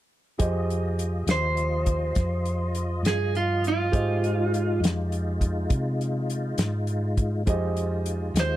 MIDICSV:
0, 0, Header, 1, 6, 480
1, 0, Start_track
1, 0, Key_signature, -4, "minor"
1, 0, Tempo, 589391
1, 320, Time_signature, 12, 3, 24, 8
1, 6976, End_track
2, 0, Start_track
2, 0, Title_t, "Upright piano"
2, 0, Program_c, 0, 0
2, 316, Note_on_c, 0, 67, 51
2, 316, Note_on_c, 0, 68, 48
2, 316, Note_on_c, 0, 72, 46
2, 319, Note_on_c, 0, 75, 56
2, 3167, Note_off_c, 0, 67, 0
2, 3168, Note_off_c, 0, 68, 0
2, 3168, Note_off_c, 0, 72, 0
2, 3169, Note_off_c, 0, 75, 0
2, 3192, Note_on_c, 0, 67, 45
2, 3196, Note_on_c, 0, 68, 39
2, 3197, Note_on_c, 0, 72, 41
2, 3201, Note_on_c, 0, 75, 48
2, 6044, Note_off_c, 0, 67, 0
2, 6047, Note_off_c, 0, 68, 0
2, 6047, Note_off_c, 0, 72, 0
2, 6049, Note_off_c, 0, 75, 0
2, 6079, Note_on_c, 0, 72, 48
2, 6084, Note_on_c, 0, 67, 53
2, 6084, Note_on_c, 0, 68, 48
2, 6089, Note_on_c, 0, 75, 64
2, 6976, Note_off_c, 0, 67, 0
2, 6976, Note_off_c, 0, 68, 0
2, 6976, Note_off_c, 0, 72, 0
2, 6976, Note_off_c, 0, 75, 0
2, 6976, End_track
3, 0, Start_track
3, 0, Title_t, "Lead electric guitar"
3, 0, Program_c, 1, 29
3, 1067, Note_on_c, 1, 72, 74
3, 2462, Note_off_c, 1, 72, 0
3, 2503, Note_on_c, 1, 68, 74
3, 2726, Note_off_c, 1, 68, 0
3, 2741, Note_on_c, 1, 65, 73
3, 2965, Note_off_c, 1, 65, 0
3, 2997, Note_on_c, 1, 65, 72
3, 3911, Note_off_c, 1, 65, 0
3, 6841, Note_on_c, 1, 72, 77
3, 6976, Note_off_c, 1, 72, 0
3, 6976, End_track
4, 0, Start_track
4, 0, Title_t, "Tonewheel organ"
4, 0, Program_c, 2, 16
4, 310, Note_on_c, 2, 53, 62
4, 311, Note_on_c, 2, 65, 63
4, 313, Note_on_c, 2, 75, 63
4, 3168, Note_off_c, 2, 53, 0
4, 3169, Note_off_c, 2, 65, 0
4, 3170, Note_off_c, 2, 75, 0
4, 3195, Note_on_c, 2, 63, 58
4, 3201, Note_on_c, 2, 65, 71
4, 3203, Note_on_c, 2, 56, 61
4, 6050, Note_off_c, 2, 63, 0
4, 6053, Note_off_c, 2, 65, 0
4, 6054, Note_off_c, 2, 56, 0
4, 6070, Note_on_c, 2, 65, 71
4, 6074, Note_on_c, 2, 63, 70
4, 6079, Note_on_c, 2, 56, 72
4, 6976, Note_off_c, 2, 56, 0
4, 6976, Note_off_c, 2, 63, 0
4, 6976, Note_off_c, 2, 65, 0
4, 6976, End_track
5, 0, Start_track
5, 0, Title_t, "Fingered electric bass"
5, 0, Program_c, 3, 33
5, 321, Note_on_c, 3, 41, 78
5, 1019, Note_off_c, 3, 41, 0
5, 1031, Note_on_c, 3, 39, 83
5, 1735, Note_off_c, 3, 39, 0
5, 1762, Note_on_c, 3, 41, 79
5, 2460, Note_off_c, 3, 41, 0
5, 2465, Note_on_c, 3, 43, 73
5, 3172, Note_off_c, 3, 43, 0
5, 3207, Note_on_c, 3, 44, 78
5, 3903, Note_off_c, 3, 44, 0
5, 3910, Note_on_c, 3, 41, 81
5, 4614, Note_off_c, 3, 41, 0
5, 4641, Note_on_c, 3, 48, 82
5, 5340, Note_off_c, 3, 48, 0
5, 5360, Note_on_c, 3, 44, 78
5, 6059, Note_off_c, 3, 44, 0
5, 6082, Note_on_c, 3, 41, 75
5, 6781, Note_off_c, 3, 41, 0
5, 6794, Note_on_c, 3, 39, 87
5, 6976, Note_off_c, 3, 39, 0
5, 6976, End_track
6, 0, Start_track
6, 0, Title_t, "Drums"
6, 322, Note_on_c, 9, 42, 77
6, 326, Note_on_c, 9, 36, 83
6, 403, Note_off_c, 9, 42, 0
6, 407, Note_off_c, 9, 36, 0
6, 572, Note_on_c, 9, 42, 50
6, 654, Note_off_c, 9, 42, 0
6, 805, Note_on_c, 9, 42, 63
6, 887, Note_off_c, 9, 42, 0
6, 1038, Note_on_c, 9, 42, 77
6, 1050, Note_on_c, 9, 38, 103
6, 1119, Note_off_c, 9, 42, 0
6, 1131, Note_off_c, 9, 38, 0
6, 1279, Note_on_c, 9, 42, 55
6, 1360, Note_off_c, 9, 42, 0
6, 1515, Note_on_c, 9, 42, 56
6, 1520, Note_on_c, 9, 36, 70
6, 1597, Note_off_c, 9, 42, 0
6, 1602, Note_off_c, 9, 36, 0
6, 1753, Note_on_c, 9, 42, 70
6, 1762, Note_on_c, 9, 36, 107
6, 1765, Note_on_c, 9, 38, 28
6, 1834, Note_off_c, 9, 42, 0
6, 1843, Note_off_c, 9, 36, 0
6, 1846, Note_off_c, 9, 38, 0
6, 1999, Note_on_c, 9, 42, 53
6, 2080, Note_off_c, 9, 42, 0
6, 2237, Note_on_c, 9, 42, 55
6, 2318, Note_off_c, 9, 42, 0
6, 2483, Note_on_c, 9, 42, 71
6, 2496, Note_on_c, 9, 38, 98
6, 2565, Note_off_c, 9, 42, 0
6, 2577, Note_off_c, 9, 38, 0
6, 2729, Note_on_c, 9, 42, 48
6, 2811, Note_off_c, 9, 42, 0
6, 2966, Note_on_c, 9, 42, 53
6, 3047, Note_off_c, 9, 42, 0
6, 3203, Note_on_c, 9, 36, 98
6, 3203, Note_on_c, 9, 42, 62
6, 3284, Note_off_c, 9, 42, 0
6, 3285, Note_off_c, 9, 36, 0
6, 3451, Note_on_c, 9, 42, 52
6, 3532, Note_off_c, 9, 42, 0
6, 3697, Note_on_c, 9, 42, 54
6, 3778, Note_off_c, 9, 42, 0
6, 3939, Note_on_c, 9, 42, 70
6, 3951, Note_on_c, 9, 38, 92
6, 4020, Note_off_c, 9, 42, 0
6, 4032, Note_off_c, 9, 38, 0
6, 4171, Note_on_c, 9, 42, 58
6, 4253, Note_off_c, 9, 42, 0
6, 4406, Note_on_c, 9, 36, 73
6, 4409, Note_on_c, 9, 42, 55
6, 4488, Note_off_c, 9, 36, 0
6, 4491, Note_off_c, 9, 42, 0
6, 4643, Note_on_c, 9, 42, 70
6, 4645, Note_on_c, 9, 36, 103
6, 4724, Note_off_c, 9, 42, 0
6, 4726, Note_off_c, 9, 36, 0
6, 4894, Note_on_c, 9, 42, 54
6, 4975, Note_off_c, 9, 42, 0
6, 5128, Note_on_c, 9, 42, 55
6, 5209, Note_off_c, 9, 42, 0
6, 5356, Note_on_c, 9, 42, 75
6, 5368, Note_on_c, 9, 38, 96
6, 5437, Note_off_c, 9, 42, 0
6, 5449, Note_off_c, 9, 38, 0
6, 5596, Note_on_c, 9, 42, 54
6, 5677, Note_off_c, 9, 42, 0
6, 5841, Note_on_c, 9, 42, 53
6, 5843, Note_on_c, 9, 36, 69
6, 5922, Note_off_c, 9, 42, 0
6, 5925, Note_off_c, 9, 36, 0
6, 6083, Note_on_c, 9, 42, 80
6, 6085, Note_on_c, 9, 36, 101
6, 6164, Note_off_c, 9, 42, 0
6, 6167, Note_off_c, 9, 36, 0
6, 6324, Note_on_c, 9, 42, 60
6, 6406, Note_off_c, 9, 42, 0
6, 6561, Note_on_c, 9, 42, 60
6, 6643, Note_off_c, 9, 42, 0
6, 6805, Note_on_c, 9, 42, 83
6, 6817, Note_on_c, 9, 38, 107
6, 6886, Note_off_c, 9, 42, 0
6, 6898, Note_off_c, 9, 38, 0
6, 6976, End_track
0, 0, End_of_file